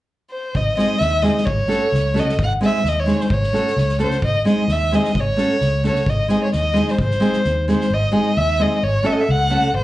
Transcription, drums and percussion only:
0.55 kick
0.79 snare
1.00 snare
1.24 snare
1.38 snare
1.47 kick
1.70 snare
1.94 snare
2.16 snare
2.29 snare
2.39 kick
2.62 snare
2.85 snare
3.08 snare
3.21 snare
3.30 kick
3.43 snare
3.55 snare
3.67 snare
3.78 snare
3.89 snare
3.99 snare
4.11 snare
4.22 kick
4.46 snare
4.69 snare
4.92 snare
5.04 snare
5.15 kick
5.38 snare
5.61 snare
5.84 snare
5.95 snare
6.06 kick
6.29 snare
6.52 snare
6.75 snare
6.88 snare
6.99 kick
7.11 snare
7.21 snare
7.33 snare
7.44 snare
7.68 snare
7.81 snare

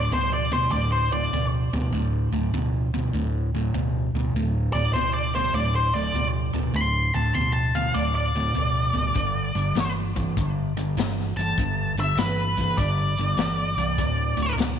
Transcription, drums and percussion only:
9.16 kick, closed hi-hat
9.57 closed hi-hat
9.76 snare, closed hi-hat
10.16 kick, closed hi-hat
10.37 kick, closed hi-hat
10.78 closed hi-hat
10.98 snare, closed hi-hat
11.20 snare
11.38 closed hi-hat
11.57 kick, closed hi-hat
11.97 closed hi-hat
12.17 snare, closed hi-hat
12.57 kick, closed hi-hat
12.78 kick, closed hi-hat
13.17 closed hi-hat
13.37 snare, closed hi-hat
13.79 closed hi-hat
13.98 kick, closed hi-hat
14.39 closed hi-hat
14.59 snare, closed hi-hat

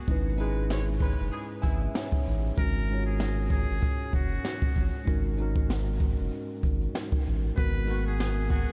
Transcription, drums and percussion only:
0.07 kick, closed hi-hat
0.37 closed hi-hat
0.70 snare, closed hi-hat
1.00 kick, closed hi-hat
1.31 closed hi-hat
1.63 kick, closed hi-hat
1.95 snare, closed hi-hat
2.12 kick
2.26 open hi-hat
2.57 kick, closed hi-hat
2.87 closed hi-hat
3.20 snare, closed hi-hat
3.50 kick, closed hi-hat
3.81 kick, closed hi-hat
4.13 kick, closed hi-hat
4.44 snare, closed hi-hat
4.62 kick
4.76 kick, closed hi-hat
5.07 kick, closed hi-hat
5.37 closed hi-hat
5.56 kick
5.70 snare, closed hi-hat
6.00 kick, closed hi-hat
6.31 closed hi-hat
6.63 kick, closed hi-hat
6.80 closed hi-hat
6.95 snare, closed hi-hat
7.12 kick
7.26 closed hi-hat
7.57 kick, closed hi-hat
7.87 closed hi-hat
8.20 snare, closed hi-hat
8.50 kick, closed hi-hat

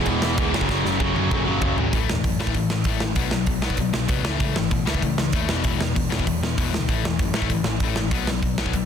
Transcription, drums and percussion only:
0.06 kick, crash
0.22 snare
0.38 kick, crash
0.54 snare
0.61 kick
0.69 kick, snare
0.86 snare
1.00 kick
1.16 high tom
1.31 kick, mid tom
1.62 kick, floor tom
1.78 floor tom
1.93 kick, open hi-hat
2.10 snare
2.24 kick, open hi-hat
2.40 snare
2.47 kick
2.54 kick, open hi-hat
2.70 snare
2.84 kick, open hi-hat
3.00 snare
3.15 kick, open hi-hat
3.31 snare
3.46 kick, open hi-hat
3.62 snare
3.70 kick
3.77 kick, open hi-hat
3.94 snare
4.08 kick, open hi-hat
4.25 snare
4.40 kick, open hi-hat
4.56 snare
4.71 kick, open hi-hat
4.87 snare
4.94 kick
5.02 kick, open hi-hat
5.18 snare
5.32 kick, open hi-hat
5.49 snare
5.64 kick, open hi-hat
5.81 snare
5.96 kick, open hi-hat
6.12 snare
6.19 kick
6.27 kick, open hi-hat
6.43 snare
6.58 kick, open hi-hat
6.74 snare
6.89 kick, open hi-hat
7.05 snare
7.19 kick, open hi-hat
7.34 snare
7.42 kick
7.50 kick, open hi-hat
7.64 snare
7.80 kick, open hi-hat
7.96 snare
8.11 kick, open hi-hat
8.27 snare
8.43 kick, open hi-hat
8.58 snare
8.66 kick
8.73 kick, open hi-hat

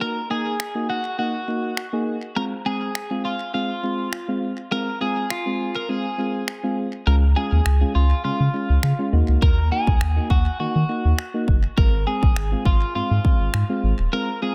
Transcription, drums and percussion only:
0.60 finger snap
1.77 finger snap
2.95 finger snap
4.13 finger snap
5.30 finger snap
6.48 finger snap
7.66 finger snap
8.83 finger snap
9.42 kick
9.87 kick
10.01 finger snap
10.30 kick
11.19 finger snap
11.48 kick
11.78 kick
12.23 kick
12.36 finger snap
12.65 kick
13.25 kick
13.54 finger snap

